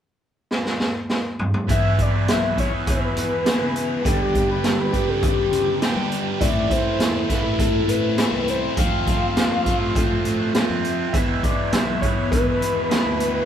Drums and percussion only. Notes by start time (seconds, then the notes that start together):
0.51 snare
0.66 snare
0.80 snare
1.10 snare
1.39 mid tom
1.54 mid tom
1.69 kick, closed hi-hat
1.99 kick, closed hi-hat
2.28 snare, closed hi-hat
2.58 kick, closed hi-hat
2.87 kick, closed hi-hat
3.17 closed hi-hat
3.46 snare, closed hi-hat
3.76 closed hi-hat
4.05 kick, closed hi-hat
4.35 kick, closed hi-hat
4.64 snare, closed hi-hat
4.93 kick, closed hi-hat
5.23 kick, closed hi-hat
5.53 closed hi-hat
5.82 snare, closed hi-hat
6.12 closed hi-hat
6.41 kick, closed hi-hat
6.70 kick, closed hi-hat
7.00 snare, closed hi-hat
7.29 kick, snare, closed hi-hat
7.59 kick, closed hi-hat
7.89 closed hi-hat
8.18 snare, closed hi-hat
8.48 closed hi-hat
8.77 kick, closed hi-hat
9.07 kick, closed hi-hat
9.37 snare, closed hi-hat
9.66 kick, closed hi-hat
9.96 kick, closed hi-hat
10.25 closed hi-hat
10.55 snare, closed hi-hat
10.85 closed hi-hat
11.14 kick, closed hi-hat
11.43 kick, closed hi-hat
11.72 snare, closed hi-hat
12.02 kick, closed hi-hat
12.32 kick, closed hi-hat
12.62 closed hi-hat
12.91 snare, closed hi-hat
13.20 closed hi-hat